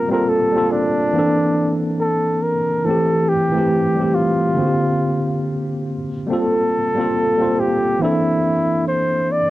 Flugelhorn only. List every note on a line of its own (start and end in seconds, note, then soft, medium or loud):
0.00 0.11 A#4 loud
0.12 0.31 A#4 medium
0.29 0.73 A4 medium
0.71 1.76 D4 loud
2.00 2.44 A4 medium
2.42 2.87 A#4 medium
2.86 3.30 A4 medium
3.29 4.17 G4 medium
4.15 5.43 F4 medium
6.30 7.61 A4 loud
7.59 8.03 G4 loud
8.02 8.87 E4 medium
8.88 9.33 C5 loud
9.31 9.50 D5 loud